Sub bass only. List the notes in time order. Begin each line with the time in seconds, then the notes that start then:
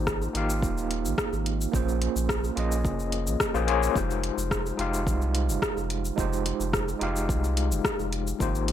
Already playing: G#1
0.35 G#1
0.62 D#1
1.05 G#1
1.32 G#1
1.73 A#1
2.16 A#1
2.57 A#1
2.85 F1
3.27 A#1
3.54 A#1
3.96 F1
4.38 F1
4.79 F1
5.07 C2
5.49 F1
5.77 F1
6.18 F1
6.60 F1
7.02 F1
7.29 C2
7.71 F1
7.99 F1
8.40 G#1